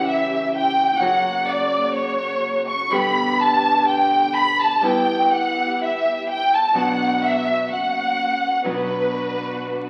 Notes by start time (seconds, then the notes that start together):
Already playing: C#2 C#3 E3 G3 C#4 E4 G4
0.06 E5
0.54 G5
0.99 F#1 C#3 F#3 A#3 F#4 F#5
1.48 D5
1.94 C#5
2.68 C#6
2.90 G1 B2 D3 G3 B3 D4 G4 B5
3.39 A5
3.87 G5
4.35 B5
4.59 A5
4.81 G1 G3 B3 E4 G4 G5
5.32 F#5
5.82 E5
6.29 G5
6.52 A5
6.73 F#1 B2 F#3 B3 D4 F#4 F#5
7.23 E5
7.69 F#1 A#3 C#4 F#4 F#5
8.64 B1 B2 F#3 B3 D4 F#4 B4